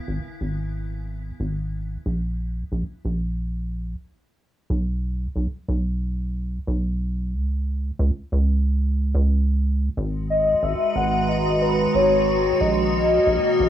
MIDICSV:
0, 0, Header, 1, 4, 480
1, 0, Start_track
1, 0, Key_signature, 5, "minor"
1, 0, Tempo, 659341
1, 1498, Time_signature, 4, 2, 24, 8
1, 9966, End_track
2, 0, Start_track
2, 0, Title_t, "Soft synth lead"
2, 0, Program_c, 0, 80
2, 7499, Note_on_c, 0, 75, 101
2, 7739, Note_on_c, 0, 76, 102
2, 7750, Note_off_c, 0, 75, 0
2, 7978, Note_on_c, 0, 78, 113
2, 7989, Note_off_c, 0, 76, 0
2, 8218, Note_on_c, 0, 75, 107
2, 8229, Note_off_c, 0, 78, 0
2, 8459, Note_on_c, 0, 71, 98
2, 8470, Note_off_c, 0, 75, 0
2, 8699, Note_on_c, 0, 73, 101
2, 8709, Note_off_c, 0, 71, 0
2, 9179, Note_on_c, 0, 75, 102
2, 9189, Note_off_c, 0, 73, 0
2, 9966, Note_off_c, 0, 75, 0
2, 9966, End_track
3, 0, Start_track
3, 0, Title_t, "Ambient pad"
3, 0, Program_c, 1, 92
3, 7258, Note_on_c, 1, 56, 98
3, 7310, Note_on_c, 1, 66, 94
3, 7375, Note_on_c, 1, 51, 87
3, 7589, Note_on_c, 1, 71, 94
3, 7680, Note_on_c, 1, 82, 90
3, 8104, Note_on_c, 1, 73, 76
3, 9178, Note_off_c, 1, 56, 0
3, 9178, Note_off_c, 1, 71, 0
3, 9179, Note_on_c, 1, 46, 96
3, 9237, Note_on_c, 1, 58, 80
3, 9946, Note_off_c, 1, 82, 0
3, 9966, Note_off_c, 1, 46, 0
3, 9966, Note_off_c, 1, 51, 0
3, 9966, Note_off_c, 1, 58, 0
3, 9966, Note_off_c, 1, 66, 0
3, 9966, Note_off_c, 1, 73, 0
3, 9966, End_track
4, 0, Start_track
4, 0, Title_t, "Acid bass"
4, 0, Program_c, 2, 38
4, 59, Note_on_c, 2, 32, 99
4, 143, Note_off_c, 2, 32, 0
4, 299, Note_on_c, 2, 32, 100
4, 961, Note_off_c, 2, 32, 0
4, 1019, Note_on_c, 2, 32, 99
4, 1441, Note_off_c, 2, 32, 0
4, 1500, Note_on_c, 2, 34, 91
4, 1921, Note_off_c, 2, 34, 0
4, 1979, Note_on_c, 2, 34, 100
4, 2063, Note_off_c, 2, 34, 0
4, 2219, Note_on_c, 2, 34, 100
4, 2881, Note_off_c, 2, 34, 0
4, 3419, Note_on_c, 2, 35, 92
4, 3841, Note_off_c, 2, 35, 0
4, 3898, Note_on_c, 2, 35, 95
4, 3982, Note_off_c, 2, 35, 0
4, 4138, Note_on_c, 2, 35, 98
4, 4800, Note_off_c, 2, 35, 0
4, 4859, Note_on_c, 2, 35, 94
4, 5338, Note_on_c, 2, 37, 91
4, 5349, Note_off_c, 2, 35, 0
4, 5760, Note_off_c, 2, 37, 0
4, 5818, Note_on_c, 2, 37, 99
4, 5902, Note_off_c, 2, 37, 0
4, 6059, Note_on_c, 2, 37, 101
4, 6653, Note_off_c, 2, 37, 0
4, 6658, Note_on_c, 2, 37, 100
4, 7200, Note_off_c, 2, 37, 0
4, 7258, Note_on_c, 2, 32, 91
4, 7680, Note_off_c, 2, 32, 0
4, 7738, Note_on_c, 2, 32, 98
4, 7822, Note_off_c, 2, 32, 0
4, 7978, Note_on_c, 2, 32, 100
4, 8640, Note_off_c, 2, 32, 0
4, 8698, Note_on_c, 2, 32, 95
4, 9120, Note_off_c, 2, 32, 0
4, 9179, Note_on_c, 2, 34, 94
4, 9600, Note_off_c, 2, 34, 0
4, 9659, Note_on_c, 2, 34, 93
4, 9742, Note_off_c, 2, 34, 0
4, 9898, Note_on_c, 2, 34, 100
4, 9966, Note_off_c, 2, 34, 0
4, 9966, End_track
0, 0, End_of_file